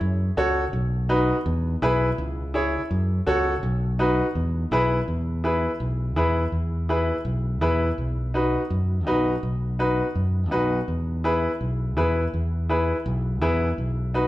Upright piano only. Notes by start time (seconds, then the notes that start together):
0.37 F#4 A4 C#5
1.09 D#4 F#4 B4
1.82 E4 G#4 B4
2.54 E4 G#4 C#5
3.27 F#4 A4 C#5
3.99 D#4 F#4 B4
4.72 E4 G#4 B4
5.44 E4 G#4 B4
6.16 E4 G#4 B4
6.89 E4 G#4 B4
7.61 E4 G#4 B4
8.34 D#4 F#4 B4
9.07 D#4 F#4 B4
9.79 D#4 F#4 B4
10.51 D#4 F#4 B4
11.24 E4 G#4 B4
11.97 E4 G#4 B4
12.69 E4 G#4 B4
13.41 E4 G#4 B4
14.14 D#4 F#4 B4